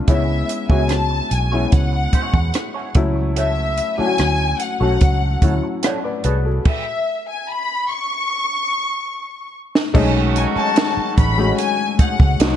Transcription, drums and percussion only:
0.08 kick, closed hi-hat
0.49 closed hi-hat
0.70 kick
0.89 cross-stick, closed hi-hat
1.31 closed hi-hat
1.72 kick, closed hi-hat
2.13 kick, closed hi-hat
2.34 kick
2.54 cross-stick, closed hi-hat
2.95 kick, closed hi-hat
3.36 closed hi-hat
3.77 closed hi-hat
4.18 cross-stick, closed hi-hat
4.60 closed hi-hat
5.01 kick, closed hi-hat
5.42 kick, closed hi-hat
5.83 cross-stick, closed hi-hat
6.24 closed hi-hat
6.65 kick, crash
9.75 snare
9.95 kick, crash
10.36 closed hi-hat
10.76 snare, closed hi-hat
11.18 kick, closed hi-hat
11.58 closed hi-hat
11.99 kick, closed hi-hat
12.20 kick
12.40 snare, closed hi-hat

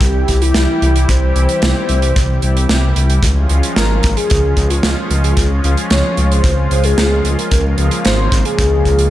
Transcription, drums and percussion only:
0.01 kick, closed hi-hat
0.28 kick, closed hi-hat
0.42 closed hi-hat
0.54 snare, closed hi-hat
0.82 closed hi-hat
0.96 closed hi-hat
1.09 kick, closed hi-hat
1.36 closed hi-hat
1.49 closed hi-hat
1.62 snare, closed hi-hat
1.89 closed hi-hat
2.02 closed hi-hat
2.16 kick, closed hi-hat
2.42 closed hi-hat
2.57 closed hi-hat
2.69 snare, closed hi-hat
2.96 closed hi-hat
3.10 closed hi-hat
3.23 kick, closed hi-hat
3.49 closed hi-hat
3.63 closed hi-hat
3.76 snare, closed hi-hat
4.03 kick, closed hi-hat
4.17 closed hi-hat
4.30 kick, closed hi-hat
4.57 kick, closed hi-hat
4.70 closed hi-hat
4.83 snare, closed hi-hat
5.11 closed hi-hat
5.24 closed hi-hat
5.37 kick, closed hi-hat
5.64 closed hi-hat
5.77 closed hi-hat
5.90 snare, closed hi-hat
6.17 closed hi-hat
6.32 closed hi-hat
6.44 kick, closed hi-hat
6.71 closed hi-hat
6.84 closed hi-hat
6.98 snare, closed hi-hat
7.25 closed hi-hat
7.39 closed hi-hat
7.51 kick, closed hi-hat
7.78 closed hi-hat
7.91 closed hi-hat
8.05 snare, closed hi-hat
8.32 kick, closed hi-hat
8.45 closed hi-hat
8.59 kick, closed hi-hat
8.85 kick, closed hi-hat
8.99 closed hi-hat

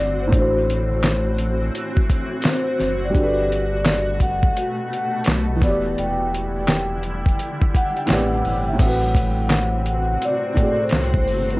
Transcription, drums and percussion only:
0.32 kick, closed hi-hat
0.70 closed hi-hat
1.02 snare, clap, closed hi-hat
1.38 closed hi-hat
1.75 closed hi-hat
1.97 kick
2.10 kick, closed hi-hat
2.42 snare, clap, closed hi-hat
2.80 snare, closed hi-hat
3.15 kick, closed hi-hat
3.52 closed hi-hat
3.85 snare, clap, closed hi-hat
4.20 kick, closed hi-hat
4.43 kick
4.57 closed hi-hat
4.93 closed hi-hat
5.24 snare, clap, closed hi-hat
5.62 kick, snare, closed hi-hat
5.98 closed hi-hat
6.34 closed hi-hat
6.67 snare, clap, closed hi-hat
7.03 closed hi-hat
7.26 kick, closed hi-hat
7.39 closed hi-hat
7.62 kick
7.75 kick, closed hi-hat
7.97 closed hi-hat
8.07 snare, clap, closed hi-hat
8.45 open hi-hat
8.79 kick, closed hi-hat, crash
9.15 kick, closed hi-hat
9.50 snare, clap, closed hi-hat
9.86 closed hi-hat
10.22 closed hi-hat
10.57 kick, closed hi-hat
10.89 snare, clap, closed hi-hat
11.14 kick
11.27 open hi-hat
11.50 closed hi-hat

